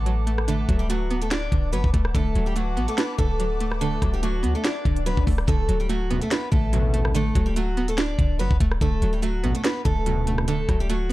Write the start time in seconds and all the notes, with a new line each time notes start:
Already playing: A1 D3 A3 B3 D4 A4 B4 F#5 A5 D6
0.06 F#3, closed hi-hat
0.27 A3, closed hi-hat
0.38 cross-stick
0.48 D3 A3 A4, closed hi-hat
0.69 D1 F#3, kick, closed hi-hat
0.79 G3 G4
0.90 F#3 A3 F#4, closed hi-hat
1.11 B3, closed hi-hat
1.22 A3 A4, closed hi-hat
1.31 D4 D5, finger snap, snare, closed hi-hat
1.52 D1 D3, kick, closed hi-hat
1.73 F#1 F#3 B3 B4, closed hi-hat
1.84 D1, kick
1.94 D1 A3, kick, closed hi-hat
2.05 cross-stick
2.15 D1 D3 A3 A4 B4 F#5 A5 D6, kick, closed hi-hat, swell
2.35 D1 F#3, closed hi-hat
2.46 G3 G4
2.56 F#3 A3 F#4, closed hi-hat
2.77 A1 B3, closed hi-hat
2.88 A3 A4, closed hi-hat
2.98 B3 D4 B4, finger snap, snare, closed hi-hat
3.18 D1 D3 A3 A4, kick, closed hi-hat
3.40 F#3, closed hi-hat
3.60 A3, closed hi-hat
3.72 cross-stick
3.81 D3 A3 A4, closed hi-hat
4.02 D1 F#3, kick, cross-stick, closed hi-hat
4.13 G3 G4
4.23 F#3 A3 F#4, closed hi-hat
4.43 D2 B3, closed hi-hat
4.55 A3 A4
4.64 D4 D5, finger snap, snare, closed hi-hat
4.85 D1 D3, kick, closed hi-hat
4.96 closed hi-hat
5.06 F#3 B3 B4, closed hi-hat
5.17 D1, kick
5.27 D1 A3, kick, open hi-hat
5.38 cross-stick
5.47 D1 D3 A3 A4, kick, closed hi-hat
5.68 D1 F#3, closed hi-hat
5.80 G3 G4
5.89 F#3 A3 F#4, closed hi-hat
6.10 F#1 D2 B2 B3, closed hi-hat
6.22 A3 A4, closed hi-hat
6.31 B3 D4 B4, finger snap, snare, closed hi-hat
6.52 A1 D3 A3 A4, kick, closed hi-hat
6.73 F#1 D2 B2 F#3, closed hi-hat
6.94 A3, closed hi-hat
7.05 cross-stick
7.14 D3 A3 A4, closed hi-hat
7.35 D1 F#3, kick, closed hi-hat
7.46 G3 G4
7.56 F#3 A3 F#4, closed hi-hat
7.77 B3, closed hi-hat
7.88 A3 A4, closed hi-hat
7.97 D4 D5, finger snap, snare, closed hi-hat
8.19 D1 D3, kick, closed hi-hat
8.39 F#1 F#3 B3 B4, closed hi-hat
8.51 D1, kick
8.60 D1 A3, kick, closed hi-hat
8.71 cross-stick
8.81 D1 D3 A3 A4, kick, closed hi-hat
9.02 D1 F#3, closed hi-hat
9.13 G3 G4
9.22 F#3 A3 F#4, closed hi-hat
9.43 F#1 A1 D2 B2 B3, closed hi-hat
9.55 A3 A4, closed hi-hat
9.64 B3 D4 B4, finger snap, snare, closed hi-hat
9.85 D1 D3 A3 A4, kick, closed hi-hat
10.06 F#1 D2 B2 F#3, closed hi-hat
10.27 A3, closed hi-hat
10.38 cross-stick
10.48 D3 A3 A4, closed hi-hat
10.68 D1 F#3, kick, cross-stick, closed hi-hat
10.80 G3 G4
10.89 F#3 A3 F#4, closed hi-hat
11.09 B3